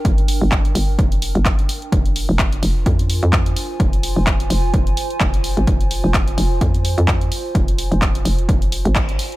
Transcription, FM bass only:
X:1
M:4/4
L:1/16
Q:"Swing 16ths" 1/4=128
K:Fdor
V:1 name="FM bass" clef=bass
G,,,3 G,,,3 G,,,2 F,,,3 G,,,3 z2 | F,,,3 F,,,3 F,,,2 F,,3 F,,3 z2 | F,,,3 F,,,3 F,,,2 F,,,2 z2 F,,,3 A,,, | F,,,3 F,,,3 F,,,2 F,,3 F,,3 z2 |
F,,,3 F,,,3 F,,,2 F,,,3 A,,,3 z2 |]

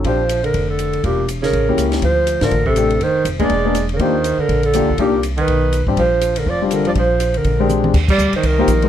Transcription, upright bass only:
X:1
M:4/4
L:1/8
Q:"Swing" 1/4=243
K:Bb
V:1 name="Upright bass" clef=bass
B,,,4 F,,,4 | =E,,,4 A,,,2 ^C,,2 | D,,3 A,, A,,,4 | F,,,2 F,,,2 =E,,,4 |
E,,3 z B,,,2- (3B,,, D,, _C,, | C,,4 =B,,,3 A,,, | B,,,4 F,,,4 | B,,,4 B,,,4 |
[K:Eb] E,,2 D,, z C,,2 B,,,2 |]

